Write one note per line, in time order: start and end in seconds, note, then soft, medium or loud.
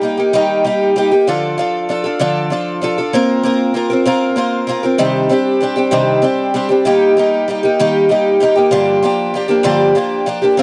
0.01 0.18 G3 medium
0.01 0.18 A#3 medium
0.01 0.18 D#4 medium
0.01 0.16 G4 medium
0.17 0.34 A#3 soft
0.17 0.34 D#4 medium
0.17 0.33 G4 medium
0.33 0.65 D#3 medium
0.33 0.63 G3 medium
0.33 0.64 A#3 medium
0.33 0.65 D#4 medium
0.33 0.66 G4 medium
0.64 0.95 G3 medium
0.64 0.95 A#3 medium
0.64 0.96 D#4 medium
0.64 0.97 G4 medium
0.96 1.11 G3 medium
0.96 1.12 A#3 medium
0.96 1.12 D#4 medium
0.96 1.10 G4 medium
1.12 1.28 A#3 soft
1.12 1.28 D#4 soft
1.12 1.27 G4 medium
1.27 1.58 D3 medium
1.27 1.56 F3 medium
1.27 1.58 D4 medium
1.27 1.58 F4 medium
1.27 1.59 A4 medium
1.58 1.88 F3 medium
1.58 1.88 D4 medium
1.58 1.90 F4 medium
1.58 1.90 A4 medium
1.89 2.05 F3 medium
1.89 2.05 D4 medium
1.89 2.04 F4 medium
1.89 2.03 A4 medium
2.04 2.20 D4 soft
2.04 2.20 F4 medium
2.04 2.20 A4 medium
2.19 2.51 D3 medium
2.19 2.49 F3 medium
2.19 2.50 D4 medium
2.19 2.51 F4 medium
2.19 2.52 A4 medium
2.50 2.80 F3 medium
2.50 2.81 D4 medium
2.50 2.82 F4 medium
2.50 2.83 A4 medium
2.81 2.97 F3 medium
2.81 2.98 D4 medium
2.81 2.98 F4 medium
2.81 2.97 A4 medium
2.98 3.14 D4 soft
2.98 3.13 F4 soft
2.98 3.13 A4 soft
3.13 3.42 A#3 medium
3.13 3.43 C4 medium
3.13 3.44 F4 medium
3.13 3.45 A#4 loud
3.43 3.73 A#3 medium
3.43 3.74 C4 medium
3.43 3.75 F4 medium
3.43 3.76 A#4 medium
3.74 3.90 A#3 medium
3.74 3.91 C4 medium
3.74 3.90 F4 medium
3.74 3.89 A#4 medium
3.90 4.05 C4 soft
3.90 4.06 F4 medium
3.90 4.06 A#4 medium
4.05 4.35 A#3 medium
4.05 4.36 C4 medium
4.05 4.36 F4 medium
4.05 4.37 A#4 medium
4.36 4.66 A#3 medium
4.36 4.67 C4 medium
4.36 4.68 F4 medium
4.36 4.69 A#4 medium
4.67 4.83 A#3 medium
4.67 4.84 C4 medium
4.67 4.83 F4 medium
4.67 4.82 A#4 medium
4.83 4.98 C4 soft
4.83 4.99 F4 soft
4.83 4.99 A#4 medium
4.98 5.30 C3 medium
4.98 5.30 D#3 medium
4.98 5.28 G3 medium
4.98 5.29 C4 medium
4.98 5.30 D4 medium
4.98 5.31 G4 medium
5.29 5.59 G3 medium
5.29 5.60 C4 medium
5.29 5.62 D4 medium
5.29 5.62 G4 medium
5.60 5.77 G3 medium
5.60 5.77 C4 medium
5.60 5.76 D4 medium
5.60 5.75 G4 medium
5.76 5.91 G3 medium
5.76 5.92 C4 soft
5.76 5.91 D4 medium
5.76 5.92 G4 medium
5.91 6.23 C3 medium
5.91 6.24 D#3 medium
5.91 6.21 G3 medium
5.91 6.21 C4 medium
5.91 6.23 D4 medium
5.91 6.23 G4 medium
6.22 6.53 G3 medium
6.22 6.53 C4 medium
6.22 6.54 D4 medium
6.22 6.55 G4 medium
6.54 6.70 G3 medium
6.54 6.70 C4 medium
6.54 6.69 D4 medium
6.54 6.68 G4 medium
6.69 6.85 G3 soft
6.69 6.86 C4 soft
6.69 6.86 D4 soft
6.69 6.85 G4 medium
6.85 7.17 D#3 medium
6.85 7.15 G3 medium
6.85 7.17 A#3 medium
6.85 7.17 D#4 medium
6.85 7.18 G4 medium
7.17 7.47 G3 medium
7.17 7.48 A#3 medium
7.17 7.49 D#4 medium
7.17 7.49 G4 medium
7.48 7.64 G3 medium
7.48 7.64 A#3 medium
7.48 7.63 D#4 medium
7.48 7.62 G4 medium
7.63 7.79 A#3 soft
7.63 7.79 D#4 medium
7.63 7.79 G4 medium
7.79 8.11 D#3 medium
7.79 8.08 G3 medium
7.79 8.09 A#3 loud
7.79 8.10 D#4 medium
7.79 8.10 G4 medium
8.09 8.39 G3 medium
8.09 8.40 A#3 medium
8.09 8.41 D#4 medium
8.09 8.42 G4 medium
8.40 8.56 G3 medium
8.40 8.57 A#3 medium
8.40 8.56 D#4 medium
8.40 8.54 G4 medium
8.56 8.71 A#3 soft
8.56 8.72 D#4 medium
8.56 8.71 G4 medium
8.71 9.03 G2 medium
8.71 9.03 D3 medium
8.71 9.01 F3 medium
8.71 9.02 A#3 medium
8.71 9.03 D4 medium
8.71 9.04 G4 medium
9.02 9.33 F3 medium
9.02 9.34 A#3 medium
9.02 9.35 D4 medium
9.02 9.35 G4 medium
9.34 9.50 F3 medium
9.34 9.49 A#3 medium
9.34 9.48 D4 medium
9.34 9.47 G4 medium
9.48 9.63 F3 medium
9.48 9.63 A#3 medium
9.48 9.64 D4 medium
9.48 9.64 G4 medium
9.63 9.95 G2 medium
9.63 9.96 D3 medium
9.63 9.94 F3 medium
9.63 9.95 A#3 medium
9.63 9.96 D4 loud
9.63 9.96 G4 medium
9.95 10.25 F3 medium
9.95 10.26 A#3 medium
9.95 10.26 D4 medium
9.95 10.28 G4 medium
10.26 10.42 F3 medium
10.26 10.43 A#3 medium
10.26 10.42 D4 medium
10.26 10.41 G4 medium
10.42 10.57 F3 soft
10.42 10.56 A#3 soft
10.42 10.59 D4 soft
10.42 10.58 G4 medium
10.57 10.63 A#3 medium
10.57 10.63 C4 medium
10.57 10.63 F4 medium
10.57 10.63 A#4 loud